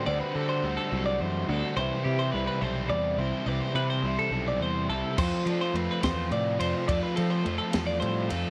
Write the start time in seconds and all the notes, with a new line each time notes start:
Already playing: G3 G4
0.06 D2 D3 A3 C4 F#4 C5 D5
0.20 B4
0.35 D3 A3 C4 F#4 A4
0.49 C5
0.63 D2 D3 G3 A3 C4 F#4
0.77 A4
0.91 C2 D3 F#3 A3 C4 F#4
1.06 D5
1.20 F#2 E3 C5
1.49 D2 D3 A3 C4 F#4 A4
1.77 C2 C3 E3 G3 C4 E4 B4 C5
2.04 C3 C4 E4 G4
2.08 G3
2.19 C5
2.32 C2 E3 G3 C4 B4
2.37 E4
2.47 B4
2.61 B1 C3 E3 G3 C4 E4 A4 C5
2.89 E2 G3 D5
3.18 C2 C4 E4 C5
3.22 G3
3.46 C2 C3 E3 G3 C4 E4 B4 D5
3.61 C5
3.74 C3 C4 E4 B4
3.78 G3
3.90 C5
4.03 C2 E3 G3 C4
4.07 E4
4.19 A4
4.31 B1 G3 C4 E4 A4
4.35 C3 E3
4.48 D5
4.60 E2 G3 C5
4.89 C2 C4 E4 A4
4.93 G3
5.17 F2 F3 A3 C4 F4 G4 C5, kick, crash
5.33 A4
5.46 F3 A3 C4 D4 F4 A4, ride
5.61 F4 C5
5.74 F2 F3 A3 C4 F4 B4, ride
5.91 B4
6.02 E2 F3 A3 C4 F4 B4 C5, kick, snare, ride
6.31 A2 C3 D5, ride
6.59 F2 A3 C4 D4 F4 C5, ride
6.74 F4
6.87 F2 F3 A3 C4 F4 A4 D5, kick, ride
7.03 B4
7.15 F3 A3 C4 F4 A4, ride
7.30 C5
7.44 F2 F3 A3 C4 F4, ride
7.58 A4
7.71 E2 A3 C4 F4, snare, ride
7.76 F3
7.87 D5
8.00 A2 G3 C5, ride
8.29 F2 F3 A3 C4 F4 A4, ride